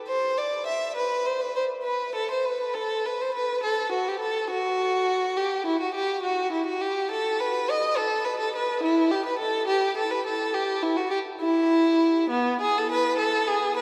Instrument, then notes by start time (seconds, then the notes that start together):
violin
0.08 C5
0.38 D5
0.66 E5
0.96 B4
1.26 C5
1.41 B4
1.56 C5
1.83 B4
2.15 A4
2.31 C5
2.45 B4
2.74 A4
3.05 B4
3.21 C5
3.35 B4
3.63 A4
3.92 F#4
4.08 G4
4.20 A4
4.50 F#4
5.37 G4
5.66 E4
5.80 F#4
5.94 G4
6.22 F#4
6.52 E4
6.66 F#4
6.81 G4
7.11 A4
7.40 B4
7.70 D#5
7.97 A4
8.25 B4
8.39 A4
8.55 B4
8.83 E4
9.11 G4
9.25 B4
9.39 A4
9.68 G4
9.98 A4
10.11 B4
10.26 A4
10.54 G4
10.82 E4
10.97 F#4
11.11 G4
11.40 E4
12.30 B3
12.61 G#4
12.78 A4
12.91 B4
13.18 A4
13.48 G#4
13.76 B4